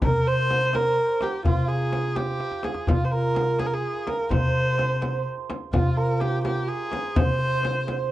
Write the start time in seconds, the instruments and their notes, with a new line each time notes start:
Already playing: santur F4 G4
0.02 upright bass C3, santur A#4, kamancheh A#4, tombak dum, frame drum
0.26 santur C5, kamancheh C5, tombak ka
0.50 frame drum
0.66 santur C5
0.73 kamancheh A#4, santur A#4, tombak tek, frame drum
0.97 tombak ka
1.09 tombak ka
1.21 santur G4, kamancheh G4, tombak tek, frame drum
1.45 upright bass C3, santur F4, kamancheh F4, tombak dum, frame drum
1.68 kamancheh G#4, santur G#4, tombak ka
1.93 tombak tek, frame drum
2.16 kamancheh G4, santur G4, tombak tek, frame drum
2.40 tombak tek
2.51 tombak ka
2.63 santur G#4, kamancheh G#4, tombak tek, frame drum
2.74 tombak ka
2.87 upright bass C3, kamancheh F4, santur F4, tombak dum, frame drum
3.05 kamancheh C5
3.11 kamancheh A#4, santur A#4, tombak ka
3.35 tombak tek, frame drum
3.59 kamancheh G#4, santur G#4, tombak tek, frame drum
3.66 kamancheh A#4
3.74 kamancheh G#4, santur G#4
3.83 tombak ka
3.95 tombak ka
4.07 kamancheh A#4, santur A#4, tombak tek, frame drum
4.30 upright bass C3, kamancheh C5, santur C5, tombak dum, frame drum
4.37 santur C5
4.45 santur C5
4.53 santur C5, tombak ka
4.59 santur C5
4.68 santur C5
4.75 santur C5, tombak tek
4.79 santur C5, frame drum
4.90 santur C5
4.96 santur C5
5.02 santur C5, tombak tek, frame drum
5.13 santur C5
5.26 tombak ka
5.38 tombak ka
5.50 tombak tek, frame drum
5.73 upright bass C3, kamancheh F4, santur F4, frame drum, tombak dum
5.97 santur A#4, kamancheh A#4, tombak ka
6.20 kamancheh G4, tombak tek, frame drum
6.44 santur G4, kamancheh G4, tombak tek, frame drum
6.68 kamancheh G#4, santur G#4, tombak ka
6.80 tombak ka
6.92 tombak tek, frame drum
7.16 upright bass C3, santur C5, kamancheh C5, tombak dum, frame drum
7.25 santur C5
7.30 santur C5
7.39 santur C5, tombak ka
7.46 santur C5
7.53 santur C5
7.63 tombak tek, frame drum
7.68 santur C5
7.76 santur C5
7.84 santur C5, tombak tek, frame drum
7.91 santur C5
7.99 santur C5